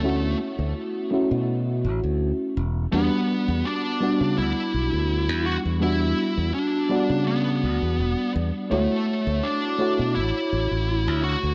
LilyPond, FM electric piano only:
\new Staff \with { instrumentName = "FM electric piano" } { \time 4/4 \key d \major \tempo 4 = 83 <a cis' e' fis'>4. <a cis' e' fis'>2 r8 | <g b d' fis'>4. <g b d' fis'>2~ <g b d' fis'>8 | <g b d' fis'>4. <g b fis' d''>2~ <g b fis' d''>8 | <a e' fis' cis''>4. <a e' fis' cis''>2~ <a e' fis' cis''>8 | }